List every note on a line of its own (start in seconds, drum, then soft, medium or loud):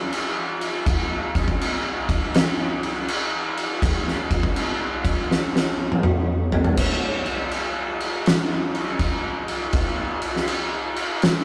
0.12 crash medium
0.61 crash medium
0.86 kick loud
0.86 crash medium
1.35 kick medium
1.35 crash medium
1.48 kick medium
1.61 crash medium
2.09 kick medium
2.09 crash medium
2.34 snare loud
2.34 crash medium
2.83 crash medium
3.08 crash medium
3.57 crash medium
3.82 kick loud
3.82 crash medium
4.08 snare soft
4.31 kick medium
4.31 crash medium
4.43 kick medium
4.56 crash medium
5.05 kick medium
5.05 crash medium
5.31 snare medium
5.56 snare medium
5.92 high tom medium
6.03 mid tom medium
6.52 floor tom loud
6.64 floor tom loud
6.77 kick loud
6.77 crash loud
6.77 crash medium
7.26 crash medium
7.51 crash medium
8.00 crash medium
8.26 snare loud
8.26 crash medium
8.75 crash medium
8.99 kick medium
8.99 crash medium
9.48 crash medium
9.73 kick loud
9.73 crash medium
10.22 crash medium
10.36 snare soft
10.48 crash medium
10.96 crash medium
11.22 snare loud
11.22 crash medium